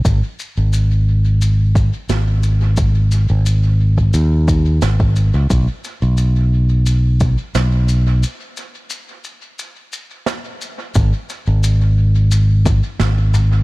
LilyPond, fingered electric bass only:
\new Staff \with { instrumentName = "Fingered electric bass" } { \clef bass \time 4/4 \key gis \minor \tempo 4 = 88 gis,,16 r8 gis,,2 r16 gis,,4~ | gis,,8. gis,,4~ gis,,16 dis,4 gis,,8. cis,16 | b,,16 r8 b,,2 r16 b,,4 | r1 |
gis,,16 r8 gis,,2 r16 gis,,4 | }